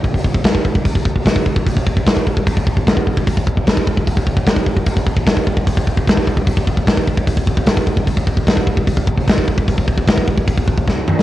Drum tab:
HH |o---o---o---o---|o---o---o---o---|o---o---o---o---|o---o---o---o---|
SD |----o-------o---|----o-------o---|----o-------o---|----o-------o---|
T2 |----------------|----------------|----------------|----------------|
BD |oooooooooooooooo|oooooooooooooooo|oooooooooooooooo|oooooooooooooooo|

HH |o---o---o---o---|o---o---o---o---|o---o---o-------|
SD |----o-------o---|----o-------o---|----o-------o--o|
T2 |----------------|----------------|--------------o-|
BD |oooooooooooooooo|oooooooooooooooo|ooooooooooooo---|